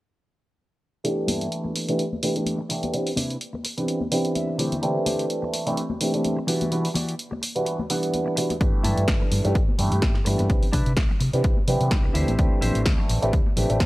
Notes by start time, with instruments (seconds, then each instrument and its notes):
1.04 grand piano E3 A3 B3 D4 G4, closed hi-hat
1.27 clean electric guitar G2 B3 E4 A4, open hi-hat, tambourine, high conga
1.41 closed hi-hat
1.52 closed hi-hat
1.64 muted clean electric guitar stroke, tambourine, high conga
1.75 muted clean electric guitar stroke, open hi-hat
1.88 grand piano E3 A3 B3 D4 G4, closed hi-hat
1.99 muted clean electric guitar stroke, closed hi-hat
2.12 tambourine, high conga
2.23 grand piano E3 A3 B3 D4 G4, open hi-hat, tambourine
2.35 grand piano E3 A3 B3 D4 G4, closed hi-hat
2.46 closed hi-hat, tambourine, high conga
2.59 muted clean electric guitar stroke
2.69 grand piano E3 A3 B3 D4 G4, muted clean electric guitar stroke, open hi-hat
2.82 muted clean electric guitar stroke, closed hi-hat, tambourine, high conga
2.93 grand piano E3 B3 C4 D4 G4, closed hi-hat, tambourine
3.07 open hi-hat
3.16 clean electric guitar C3 D4 E4 B4, open hi-hat, tambourine, high conga
3.30 closed hi-hat, tambourine
3.40 closed hi-hat, tambourine
3.53 muted clean electric guitar stroke, tambourine, high conga
3.64 muted clean electric guitar stroke, open hi-hat
3.77 grand piano E3 B3 C4 D4 G4, closed hi-hat
3.87 muted clean electric guitar stroke, closed hi-hat
4.01 tambourine, high conga
4.11 grand piano E3 B3 C4 D4 G4, clean electric guitar G5, open hi-hat, tambourine
4.24 closed hi-hat, tambourine
4.35 clean electric guitar E5, closed hi-hat, tambourine, high conga
4.47 muted clean electric guitar stroke
4.58 clean electric guitar D3 E4 G4 C5 D5, grand piano E3 A3 C4 D4 G4, open hi-hat
4.72 closed hi-hat, tambourine, high conga
4.82 grand piano E3 A3 C4 D4 G4, closed hi-hat, tambourine
5.06 clean electric guitar D3 E4 G4 C5, open hi-hat, tambourine, high conga
5.19 closed hi-hat, tambourine
5.30 closed hi-hat, tambourine
5.42 muted clean electric guitar stroke, tambourine, high conga
5.53 muted clean electric guitar stroke, open hi-hat, tambourine
5.66 grand piano E3 A3 C4 D4 G4, closed hi-hat, tambourine
5.76 muted clean electric guitar stroke, closed hi-hat
5.90 tambourine, high conga
6.01 grand piano E3 A3 C4 D4 G4, open hi-hat
6.13 grand piano E3 A3 C4 D4 G4, closed hi-hat, tambourine
6.24 closed hi-hat, tambourine, high conga
6.37 muted clean electric guitar stroke
6.47 clean electric guitar E3 F#4 G4 D5, grand piano E3 G3 B3 D4 F#4, open hi-hat
6.61 closed hi-hat, tambourine, high conga
6.71 grand piano E3 G3 B3 D4 F#4, closed hi-hat, tambourine
6.85 open hi-hat
6.94 clean electric guitar E3 F#4 G4 D5, open hi-hat, tambourine, high conga
7.09 closed hi-hat
7.19 closed hi-hat, tambourine
7.31 muted clean electric guitar stroke, tambourine, high conga
7.42 muted clean electric guitar stroke, open hi-hat, tambourine
7.55 grand piano E3 G3 B3 D4 F#4, closed hi-hat
7.65 muted clean electric guitar stroke, closed hi-hat
7.79 tambourine, high conga
7.90 grand piano E3 G3 B3 D4 F#5, open hi-hat
8.03 closed hi-hat, tambourine
8.14 closed hi-hat, tambourine, high conga
8.26 muted clean electric guitar stroke
8.36 grand piano E3 G3 B3 D4 F#4, muted clean electric guitar stroke, open hi-hat, tambourine
8.49 muted clean electric guitar stroke, closed hi-hat, tambourine, high conga
8.60 fingered electric bass G1, grand piano E3 A3 B3 D4 G4, kick, closed hi-hat
8.83 fingered electric bass G2, clean electric guitar E4 A4 B4, open hi-hat, tambourine, high conga, low conga
8.97 fingered electric bass G2, closed hi-hat, tambourine
9.08 fingered electric bass G1, kick, snare, closed hi-hat
9.20 muted clean electric guitar stroke, tambourine, high conga, low conga
9.31 fingered electric bass G2, muted clean electric guitar stroke, open hi-hat, tambourine
9.44 fingered electric bass G2, grand piano E3 A3 B3 D4 G4, closed hi-hat, tambourine
9.55 fingered electric bass G1, muted clean electric guitar stroke, kick, closed hi-hat
9.68 tambourine, high conga
9.78 fingered electric bass G2, grand piano E3 A3 B3 D4 G4, open hi-hat, tambourine, low conga
9.91 fingered electric bass G2, grand piano E3 A3 B3 D4 G4, closed hi-hat, tambourine
10.02 fingered electric bass G1, kick, snare, closed hi-hat, tambourine, high conga
10.15 muted clean electric guitar stroke, snare
10.25 fingered electric bass G2, grand piano E3 A3 B3 D4 G4, muted clean electric guitar stroke, open hi-hat, tambourine
10.38 fingered electric bass G2, muted clean electric guitar stroke, closed hi-hat, tambourine, high conga
10.50 fingered electric bass C2, grand piano B3 C4 D4, kick, closed hi-hat, tambourine
10.63 muted fingered electric bass stroke, open hi-hat
10.73 fingered electric bass C3, clean electric guitar D4 E4 B4, kick, open hi-hat, tambourine, high conga, low conga
10.86 fingered electric bass C3, closed hi-hat, tambourine
10.97 fingered electric bass C2, kick, snare, closed hi-hat
11.09 muted clean electric guitar stroke, tambourine, high conga, low conga
11.20 fingered electric bass C3, muted clean electric guitar stroke, open hi-hat, tambourine
11.33 fingered electric bass C3, grand piano E3 B3 C4 D4 G4, closed hi-hat, tambourine
11.43 fingered electric bass C2, muted clean electric guitar stroke, kick, closed hi-hat
11.57 tambourine, high conga
11.67 fingered electric bass C3, grand piano E3 B3 C4 D4 G4, open hi-hat, tambourine, low conga
11.81 fingered electric bass C3, closed hi-hat, tambourine
11.91 fingered electric bass C2, kick, snare, closed hi-hat, tambourine, high conga
12.04 muted clean electric guitar stroke
12.14 fingered electric bass D2, grand piano E3 A3 C4 D4 G4, clean electric guitar E4 G4 C5, open hi-hat
12.28 fingered electric bass A1, closed hi-hat, tambourine, high conga
12.38 fingered electric bass D2, grand piano E3 A3 C4 D4 G4, kick, closed hi-hat, tambourine
12.61 fingered electric bass A1, clean electric guitar E4 G4 C5, open hi-hat, tambourine, high conga, low conga
12.75 fingered electric bass A1, closed hi-hat
12.86 kick, snare, closed hi-hat
12.98 muted clean electric guitar stroke, tambourine, high conga, low conga
13.09 fingered electric bass A1, muted clean electric guitar stroke, open hi-hat, tambourine
13.22 fingered electric bass A1, grand piano E3 A3 C4 D4 G4, closed hi-hat, tambourine
13.33 fingered electric bass D2, muted clean electric guitar stroke, kick, closed hi-hat
13.46 tambourine, high conga
13.56 fingered electric bass A1, grand piano E3 A3 C4 D4 G4, open hi-hat, tambourine, low conga
13.69 fingered electric bass A1, grand piano E3 A3 C4 D4 G4, closed hi-hat, tambourine
13.80 fingered electric bass D2, kick, snare, closed hi-hat, tambourine, high conga